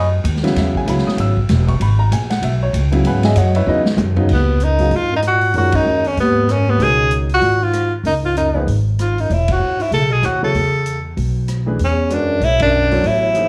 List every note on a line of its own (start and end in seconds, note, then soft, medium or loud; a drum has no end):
0.00 0.23 F#2 medium
0.24 0.55 D#2 loud
0.24 hi-hat pedal medium
0.24 ride medium
0.36 snare soft
0.43 0.85 C#3 medium
0.43 0.84 F#3 medium
0.43 0.85 B3 medium
0.43 0.85 E4 loud
0.43 snare soft
0.43 ride soft
0.56 0.86 E2 medium
0.56 0.75 E5 medium
0.56 snare soft
0.56 ride medium
0.75 0.88 G#5 loud
0.75 kick medium
0.86 1.04 C#2 medium
0.86 1.33 C#3 medium
0.86 1.33 F#3 medium
0.86 1.33 B3 medium
0.86 1.34 E4 medium
0.86 1.06 B5 medium
0.86 hi-hat pedal medium
0.86 ride medium
0.98 snare soft
1.06 1.18 D#6 medium
1.06 muted upright bass stroke soft
1.06 snare soft
1.17 1.48 G#1 medium
1.17 1.66 E6 loud
1.17 ride medium
1.37 kick medium
1.49 1.80 E1 loud
1.49 snare soft
1.49 hi-hat pedal medium
1.49 ride medium
1.68 1.80 C#6 loud
1.68 kick medium
1.68 ride medium
1.80 2.10 G#1 medium
1.80 2.00 B5 medium
1.80 ride medium
1.99 2.11 A#5 loud
2.12 2.42 A#1 loud
2.12 2.30 G#5 loud
2.12 hi-hat pedal medium
2.12 ride medium
2.30 2.42 F#5 medium
2.30 snare soft
2.30 ride medium
2.42 2.73 B1 medium
2.42 2.61 E5 medium
2.42 ride medium
2.63 2.70 C#5 medium
2.73 3.04 C#2 loud
2.73 hi-hat pedal medium
2.73 ride medium
2.92 3.33 C#3 medium
2.92 3.33 F#3 medium
2.92 3.34 B3 medium
2.92 3.34 E4 medium
2.92 ride medium
3.04 3.35 G#2 medium
3.04 3.24 B4 medium
3.04 3.24 F#5 medium
3.04 3.23 G#5 medium
3.04 3.24 B5 medium
3.04 ride medium
3.23 3.36 G#4 medium
3.23 3.36 D#5 medium
3.23 3.36 E5 medium
3.23 3.36 G#5 loud
3.23 snare medium
3.23 ride medium
3.36 3.66 F#2 loud
3.36 3.55 F#4 medium
3.36 3.55 C#5 medium
3.36 3.55 D#5 medium
3.36 3.55 F#5 loud
3.36 hi-hat pedal medium
3.36 ride medium
3.55 3.66 E4 medium
3.55 3.67 B4 medium
3.55 3.68 C#5 medium
3.55 3.67 E5 medium
3.55 ride medium
3.66 3.96 E2 medium
3.66 3.84 C#3 medium
3.66 3.84 F#3 medium
3.66 3.84 B3 medium
3.66 3.79 D#4 medium
3.66 3.84 E4 medium
3.66 3.80 G#4 medium
3.66 3.79 B4 medium
3.66 3.79 D#5 medium
3.86 snare medium
3.97 4.28 F#2 loud
3.97 hi-hat pedal medium
3.97 mid tom medium
4.16 4.28 C#3 medium
4.16 4.28 F#3 medium
4.16 4.28 B3 medium
4.16 4.29 D#4 medium
4.16 floor tom medium
4.29 4.88 C#2 medium
4.29 4.63 D#2 medium
4.29 kick medium
4.29 crash medium
4.33 4.66 B3 medium
4.60 4.94 F#2 medium
4.60 closed hi-hat soft
4.64 4.97 D#4 medium
4.79 4.91 C#3 medium
4.79 4.91 F#3 medium
4.79 4.91 B3 medium
4.79 4.91 F4 medium
4.79 4.91 G#4 medium
4.79 open hi-hat soft
4.91 5.51 G#2 medium
4.91 5.11 G#2 medium
4.91 open hi-hat soft
4.95 5.13 F4 medium
5.12 5.17 F#2 medium
5.12 5.20 D#4 medium
5.22 5.53 A#2 medium
5.22 cross-stick soft
5.22 closed hi-hat soft
5.27 5.54 F#4 medium
5.41 open hi-hat soft
5.54 5.83 F#2 medium
5.54 5.76 A#2 medium
5.54 6.01 D#3 medium
5.54 6.01 G#3 medium
5.54 6.01 C#4 soft
5.54 6.01 F#4 medium
5.54 5.77 F#4 medium
5.54 6.01 A#4 medium
5.54 open hi-hat soft
5.72 6.08 F#2 medium
5.72 6.08 D#4 medium
5.72 kick medium
5.72 ride medium
5.85 6.14 D#2 medium
6.04 6.18 F2 medium
6.04 6.18 C#4 medium
6.04 open hi-hat soft
6.17 6.50 D#2 medium
6.17 6.76 G#2 medium
6.17 6.53 B3 medium
6.17 open hi-hat soft
6.49 6.69 F#2 medium
6.49 6.71 C#4 medium
6.49 cross-stick medium
6.49 closed hi-hat soft
6.67 6.81 D#2 medium
6.67 6.84 B3 medium
6.79 7.38 C#2 medium
6.79 7.11 B2 medium
6.79 7.26 D#3 medium
6.79 7.26 G#3 soft
6.79 7.26 C#4 soft
6.79 7.26 F#4 soft
6.79 7.26 A#4 medium
6.79 open hi-hat soft
6.83 7.12 G#4 loud
7.11 closed hi-hat soft
7.29 7.63 A#2 medium
7.29 open hi-hat soft
7.34 7.65 F#4 loud
7.41 8.01 G#1 medium
7.41 open hi-hat soft
7.62 7.93 G#2 medium
7.62 7.93 F4 medium
7.73 cross-stick medium
7.73 closed hi-hat soft
8.03 8.63 C#2 medium
8.03 8.13 F#2 medium
8.03 8.14 D#4 medium
8.03 open hi-hat soft
8.23 8.35 G#2 medium
8.23 8.36 F4 medium
8.36 8.65 F#2 medium
8.36 8.66 D#4 medium
8.36 closed hi-hat soft
8.54 8.66 F3 medium
8.54 8.66 A#3 medium
8.54 8.66 D#4 medium
8.54 8.66 G#4 medium
8.54 8.66 B4 medium
8.67 9.26 G#1 medium
8.67 open hi-hat soft
8.99 9.20 G#2 medium
8.99 9.22 F4 medium
8.99 cross-stick medium
8.99 closed hi-hat soft
9.18 9.32 F#2 medium
9.18 9.34 D#4 medium
9.18 open hi-hat soft
9.30 9.59 E1 medium
9.30 9.49 A2 medium
9.30 9.54 E4 medium
9.30 open hi-hat soft
9.48 9.82 A2 medium
9.48 kick medium
9.48 ride medium
9.52 9.84 F#4 medium
9.60 9.90 D2 medium
9.80 9.91 G#2 medium
9.80 9.93 E4 medium
9.80 open hi-hat soft
9.91 10.21 B1 medium
9.91 10.13 C#3 medium
9.91 10.13 A4 medium
9.91 open hi-hat soft
10.11 10.24 B2 medium
10.11 10.27 G#4 medium
10.22 10.52 D#2 medium
10.22 10.42 A2 medium
10.22 10.43 F#4 medium
10.22 cross-stick soft
10.22 closed hi-hat soft
10.42 11.01 C#3 medium
10.42 10.53 F#3 medium
10.42 10.54 B3 medium
10.42 10.54 E4 medium
10.42 10.54 A4 medium
10.42 11.01 A4 medium
10.42 10.54 C#5 medium
10.54 11.14 E2 medium
10.54 open hi-hat soft
10.86 closed hi-hat medium
11.17 11.76 B1 medium
11.17 open hi-hat soft
11.48 cross-stick medium
11.48 closed hi-hat soft
11.66 11.78 E3 medium
11.66 11.78 A3 medium
11.66 11.78 D4 medium
11.66 11.78 G#4 medium
11.66 11.79 B4 medium
11.79 12.39 E2 medium
11.79 12.14 E2 medium
11.79 open hi-hat soft
11.84 12.15 C#4 medium
12.10 12.44 F#2 medium
12.10 12.56 G#3 medium
12.10 12.45 D4 medium
12.10 12.57 F#4 medium
12.10 12.57 B4 soft
12.10 12.57 C#5 medium
12.10 12.57 D5 medium
12.10 closed hi-hat soft
12.40 13.00 B1 medium
12.40 12.61 A2 medium
12.40 12.62 E4 loud
12.40 open hi-hat soft
12.60 13.07 F#2 medium
12.60 13.08 D4 loud
12.60 kick medium
12.60 ride medium
12.91 13.33 F#3 medium
12.91 13.33 B3 medium
12.91 13.33 E4 medium
12.91 13.33 A4 medium
12.91 13.33 C#5 medium
12.91 open hi-hat soft
13.03 13.48 A1 medium
13.03 13.48 A2 medium
13.03 13.48 E4 medium
13.03 open hi-hat soft
13.35 13.48 F3 medium
13.35 13.48 A#3 medium
13.35 13.48 D#4 medium
13.35 13.48 G#4 medium
13.35 13.48 C5 medium
13.35 closed hi-hat soft